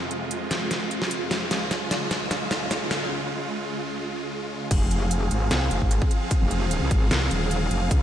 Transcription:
Already playing: supersaw synth F2 C3 G#3 F4
0.11 closed hi-hat
0.31 closed hi-hat
0.51 snare, closed hi-hat
0.71 snare, closed hi-hat
0.91 closed hi-hat
1.02 snare
1.11 closed hi-hat
1.31 snare, closed hi-hat
1.51 supersaw synth C#2 C#3, snare, closed hi-hat
1.71 snare, closed hi-hat
1.91 snare, closed hi-hat
2.11 snare, closed hi-hat
2.31 snare, closed hi-hat
2.51 snare, closed hi-hat
2.71 snare, closed hi-hat
2.91 snare, closed hi-hat
4.71 wobble bass F1, supersaw synth F3 C4 G#4 F5, kick, closed hi-hat, crash
4.91 closed hi-hat
5.11 closed hi-hat
5.31 wobble bass G#1, closed hi-hat
5.51 wobble bass C2, snare, closed hi-hat
5.71 wobble bass F1, closed hi-hat
5.82 wobble bass G#1, kick
5.91 closed hi-hat
6.02 kick
6.11 closed hi-hat
6.31 kick, closed hi-hat
6.42 wobble bass F1
6.51 closed hi-hat
6.71 closed hi-hat
6.82 wobble bass C2
6.91 wobble bass G#1, kick, closed hi-hat
7.11 wobble bass C2, snare, closed hi-hat
7.31 wobble bass D#1, closed hi-hat
7.51 closed hi-hat
7.71 wobble bass F1, closed hi-hat
7.91 wobble bass C#2, supersaw synth C#3 C#4, kick, closed hi-hat

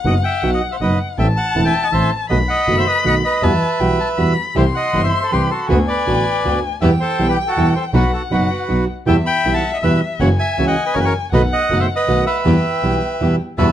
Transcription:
Already playing: violin F#5
0.05 double bass F#1, nylon-string guitar B2 F#3 B3 D#4 F#4, bandoneon D#5 F#5
0.23 bandoneon E5 G5
0.43 double bass B1, nylon-string guitar B2 F#3 B3 D#4 F#4
0.53 bandoneon D#5 F#5
0.72 bandoneon C5 E5
0.81 double bass F#1, nylon-string guitar B2 F#3 B3 D#4 F#4, bandoneon B4 D#5
1.18 double bass A1, nylon-string guitar E3 A3 C4 E4, bandoneon E5 G5, violin A5
1.36 bandoneon F#5 A5
1.55 double bass E1, nylon-string guitar E3 A3 C4 E4
1.65 bandoneon E5 G5
1.83 bandoneon D#5 F#5
1.92 double bass A1, nylon-string guitar E3 A3 C4 E4, bandoneon C5 E5
2.29 double bass B1, nylon-string guitar B2 D#3 A3 B3 F#4, bandoneon B4 D#5, violin B5
2.48 bandoneon D#5 F#5
2.67 double bass F#1, nylon-string guitar B2 D#3 A3 B3 F#4
2.77 bandoneon C5 E5
2.87 bandoneon B4 D#5
3.04 double bass B1, nylon-string guitar B2 D#3 A3 B3 F#4, bandoneon D#5 F#5
3.25 bandoneon B4 D#5
3.42 double bass E2, nylon-string guitar B2 E3 G3 B3 F#4, bandoneon B4 E5, violin A5
3.80 double bass B1, nylon-string guitar B2 E3 G3 B3 F#4, violin G5
4.00 violin A5
4.17 double bass E2, nylon-string guitar B2 E3 G3 B3 F#4, violin B5
4.55 double bass C2, nylon-string guitar C3 E3 G3 C4 E4, string section C4 E4 G4, bandoneon C5 E5, violin C6
4.75 bandoneon D#5 F#5
4.93 double bass G1, nylon-string guitar C3 E3 G3 C4 E4, string section C4 E4 G4
5.04 bandoneon C5 E5
5.22 bandoneon A4 C5
5.31 double bass C2, nylon-string guitar C3 E3 G3 C4 E4, string section C4 E4 G4, bandoneon G4 B4
5.51 bandoneon F#4 A4
5.69 double bass D2, nylon-string guitar D3 A3 B3 F#4, string section B3 D4 F#4, bandoneon F#4 B4, violin G#5
5.88 bandoneon B4 D5
6.06 double bass A1, nylon-string guitar D3 A3 B3 F#4, string section B3 D4 F#4
6.44 double bass D2, nylon-string guitar D3 A3 B3 F#4, string section B3 D4 F#4
6.81 double bass E2, nylon-string guitar B2 E3 G3 B3 E4, string section B3 E4 G4, bandoneon B4 E5, violin G5
7.00 bandoneon A4 C5
7.19 double bass B1, nylon-string guitar B2 E3 G3 B3 E4, string section B3 E4 G4
7.29 bandoneon G4 B4
7.47 bandoneon F#4 A4
7.56 double bass E2, nylon-string guitar B2 E3 G3 B3 E4, string section B3 E4 G4
7.76 bandoneon A4 C5
7.93 double bass B1, nylon-string guitar B2 F#3 B3 D#4 F#4, string section B3 D#4 F#4, bandoneon F#4 B4, violin F#5
8.13 bandoneon F#4 A4
8.30 double bass F#1, nylon-string guitar B2 F#3 B3 D#4 F#4, string section B3 D#4 F#4, bandoneon F#4 B4
8.68 double bass B1, nylon-string guitar B2 F#3 B3 D#4 F#4, string section B3 D#4 F#4
9.06 double bass E2, nylon-string guitar B2 E3 G3 B3 E4, string section B3 E4 G4, violin E5, bandoneon E5 G5
9.26 bandoneon G5 B5
9.45 double bass B1, nylon-string guitar B2 E3 G3 B3 E4, string section B3 E4 G4
9.54 bandoneon F#5 A5
9.73 bandoneon D#5 F#5
9.82 double bass E2, nylon-string guitar B2 E3 G3 B3 E4, string section B3 E4 G4, bandoneon B4 E5
10.20 double bass F#1, nylon-string guitar C#3 E3 A#3 C#4 F#4, string section A#3 E4 F#4, bandoneon C#5 F#5, violin G#5
10.39 bandoneon E5 G#5
10.57 double bass C#2, nylon-string guitar C#3 E3 A#3 C#4 F#4, string section A#3 E4 F#4
10.67 bandoneon D#5 F#5
10.85 bandoneon B4 D#5
10.94 double bass F#1, nylon-string guitar C#3 E3 A#3 C#4 F#4, string section A#3 E4 F#4, bandoneon A#4 C#5
11.00 bandoneon B4
11.05 bandoneon A#4 C#5
11.32 double bass B1, nylon-string guitar B2 D#3 A3 B3 F#4, string section B3 D#4 A4, bandoneon B4 D#5, violin F#5
11.52 bandoneon D#5 F#5
11.70 double bass F#1, nylon-string guitar B2 D#3 A3 B3 F#4, string section B3 D#4 A4
11.80 bandoneon C5 E5
11.96 bandoneon B4 D#5
12.08 double bass B1, nylon-string guitar B2 D#3 A3 B3 F#4, string section B3 D#4 A4, violin F#5
12.26 bandoneon B4 E5
12.45 double bass E2, nylon-string guitar B2 E3 G3 B3 E4, string section B3 E4 G4, violin G5
12.83 double bass B1, nylon-string guitar B2 E3 G3 B3 E4, string section B3 E4 G4
13.20 double bass E2, nylon-string guitar B2 E3 G3 B3 E4, string section B3 E4 G4
13.58 double bass E2, nylon-string guitar B2 E3 G3 B3 F#4, string section G3 E4 F#4, bandoneon B4 E5, violin A5

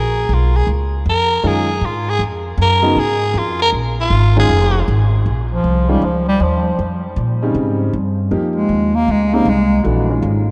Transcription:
Already playing: upright bass A#1, tenor saxophone G#4
0.29 upright bass B1
0.33 tenor saxophone F4
0.56 tenor saxophone G#4
0.67 upright bass C#2
1.06 upright bass F2, tenor saxophone A#4
1.43 upright bass F#2, upright piano D#3 G#3 C#4 F4
1.47 tenor saxophone G#4
1.81 upright bass G#2
1.85 tenor saxophone F4
2.09 tenor saxophone G#4
2.19 upright bass F2
2.58 upright bass F#2
2.62 tenor saxophone A#4
2.82 upright piano C#3 F#3 B3 D#4
2.96 upright bass G#2, tenor saxophone G#4
3.34 upright bass F2
3.38 tenor saxophone F4
3.62 tenor saxophone A#4
3.72 upright bass A#1
4.00 tenor saxophone F4
4.10 upright bass G#1
4.36 upright piano D#3 G#3 C#4 F4, tenor saxophone G#4
4.49 upright bass F1
4.88 upright bass G#1
5.26 upright bass A#1
5.51 bass clarinet F3
5.64 upright bass C2
5.89 upright piano D#3 G#3 C#4 F4, bass clarinet G3
6.02 upright bass C#2, bass clarinet F3
6.28 bass clarinet G3
6.40 upright bass D#2, bass clarinet F3
6.79 upright bass F2
7.16 upright bass A#2
7.42 upright piano C#3 G3 C4 D#4
7.54 upright bass G#2
7.93 upright bass G2
8.31 upright bass F2, upright piano F3 A#3 D#4 G4
8.56 bass clarinet G#3
8.69 upright bass D#2
8.95 bass clarinet A#3
9.08 upright bass C#2, bass clarinet G#3
9.33 upright piano C#3 G3 C4 D#4, bass clarinet A#3
9.45 upright bass C2, bass clarinet G#3
9.83 upright bass A#1, upright piano E3 A3 D4 F#4
10.09 upright piano D#3 G#3 C#4 F4
10.22 upright bass G#1

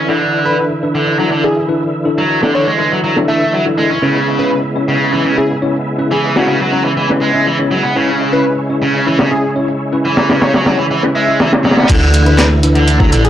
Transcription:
Already playing: tonewheel organ D3 E3 E4
0.09 overdriven electric guitar D3, tine electric piano D4 E4 A4, closed hi-hat
0.34 closed hi-hat
0.45 tine electric piano D4 E4 A4, digital synth lead B4
0.59 closed hi-hat
0.83 tine electric piano D4 E4 B4, closed hi-hat
0.95 overdriven electric guitar D3
1.08 closed hi-hat
1.19 overdriven electric guitar F#3, tine electric piano D4 E4 A4
1.32 overdriven electric guitar D3, closed hi-hat
1.44 tine electric piano D4 E4 D5, digital synth lead G#4
1.57 closed hi-hat
1.69 tine electric piano D4 E4 B4
1.81 closed hi-hat
2.05 tine electric piano D4 E4 A4, closed hi-hat
2.18 overdriven electric guitar F#3
2.30 closed hi-hat
2.42 overdriven electric guitar D3, tine electric piano D4 E4 A4, snare
2.55 overdriven electric guitar D3, digital synth lead C#5, closed hi-hat
2.67 overdriven electric guitar G#3
2.79 overdriven electric guitar G#3, tine electric piano D4 E4 B4, closed hi-hat
2.92 overdriven electric guitar F#3
3.04 overdriven electric guitar F#3, closed hi-hat
3.16 tine electric piano D4 E4 A4, snare
3.28 overdriven electric guitar A3, tine electric piano D4 E4 A4, digital synth lead E5, closed hi-hat
3.53 overdriven electric guitar F#3, closed hi-hat
3.66 tine electric piano D4 E4 A4
3.78 overdriven electric guitar G#3, tine electric piano D4 E4 A4, closed hi-hat
3.90 overdriven electric guitar C#4
4.02 tonewheel organ C#3 G#3 B3, overdriven electric guitar C#3, tine electric piano C#4 E4 B4, closed hi-hat
4.27 closed hi-hat
4.39 tine electric piano C#4 E4 B4, digital synth lead B4
4.52 closed hi-hat
4.76 tine electric piano C#4 E4 C#5, closed hi-hat
4.88 overdriven electric guitar C#3
5.01 closed hi-hat
5.13 overdriven electric guitar E3, tine electric piano C#4 E4 B4
5.25 overdriven electric guitar C#3, closed hi-hat
5.37 tine electric piano C#4 E4 E5, digital synth lead G#4
5.50 closed hi-hat
5.62 tine electric piano C#4 E4 C#5
5.74 closed hi-hat
5.99 tine electric piano C#4 E4 B4, closed hi-hat
6.11 overdriven electric guitar E3, digital synth lead G#4
6.24 digital synth lead G#4, closed hi-hat
6.36 overdriven electric guitar C#3, tine electric piano C#4 E4 B4, digital synth lead F#4, snare
6.48 overdriven electric guitar C#3, digital synth lead F#4, closed hi-hat
6.60 overdriven electric guitar F#3
6.72 overdriven electric guitar F#3, tine electric piano C#4 E4 C#5, closed hi-hat
6.85 overdriven electric guitar E3
6.97 overdriven electric guitar E3, closed hi-hat
7.09 tine electric piano C#4 E4 B4, snare
7.21 overdriven electric guitar G#3, closed hi-hat
7.35 tine electric piano C#4 E4 E5
7.46 overdriven electric guitar E3, closed hi-hat
7.59 tine electric piano C#4 E4 C#5
7.71 overdriven electric guitar F#3, closed hi-hat
7.84 overdriven electric guitar B3
7.95 overdriven electric guitar C#3, tonewheel organ C#4, tine electric piano C#4 E4 B4, closed hi-hat
8.21 closed hi-hat
8.33 tine electric piano C#4 E4 B4, digital synth lead B4
8.45 closed hi-hat
8.69 tine electric piano C#4 E4 C#5, closed hi-hat
8.82 overdriven electric guitar C#3
8.95 closed hi-hat
9.06 overdriven electric guitar E3, tine electric piano C#4 E4 B4
9.18 overdriven electric guitar C#3, snare, closed hi-hat
9.31 tine electric piano C#4 E4 E5, digital synth lead G#4
9.43 closed hi-hat
9.56 tine electric piano C#4 E4 C#5
9.68 closed hi-hat
9.92 tine electric piano C#4 E4 B4, closed hi-hat
10.05 overdriven electric guitar E3
10.17 snare, closed hi-hat
10.29 overdriven electric guitar C#3, tine electric piano C#4 E4 B4, snare, closed hi-hat
10.41 overdriven electric guitar C#3, digital synth lead C#5, snare, closed hi-hat
10.54 overdriven electric guitar F#3, snare, closed hi-hat
10.66 overdriven electric guitar F#3, tine electric piano C#4 E4 C#5, snare, closed hi-hat
10.79 overdriven electric guitar E3
10.91 overdriven electric guitar E3, closed hi-hat
11.03 tine electric piano C#4 E4 B4, snare
11.15 overdriven electric guitar G#3, digital synth lead E5, closed hi-hat
11.27 tine electric piano C#4 E4 E5
11.40 overdriven electric guitar E3, snare, closed hi-hat
11.52 tine electric piano C#4 E4 C#5, snare, closed hi-hat
11.64 overdriven electric guitar F#3, snare, closed hi-hat
11.71 snare, closed hi-hat
11.77 overdriven electric guitar B3, snare, closed hi-hat
11.83 snare, closed hi-hat
11.89 detuned saw bass D2, overdriven electric guitar D3, tonewheel organ D3 E3 E4, tine electric piano D4 E4 A4, kick, closed hi-hat, crash
12.14 closed hi-hat
12.26 tine electric piano D4 E4 A4, digital synth lead B4, closed hi-hat
12.38 snare, clap, closed hi-hat
12.63 tine electric piano D4 E4 B4, closed hi-hat
12.75 overdriven electric guitar D3, closed hi-hat
12.88 closed hi-hat
13.00 overdriven electric guitar F#3, tine electric piano D4 E4 A4, kick
13.12 detuned saw bass A1, overdriven electric guitar D3, tine electric piano D4 E4 A4, closed hi-hat
13.25 digital synth lead G#4, closed hi-hat

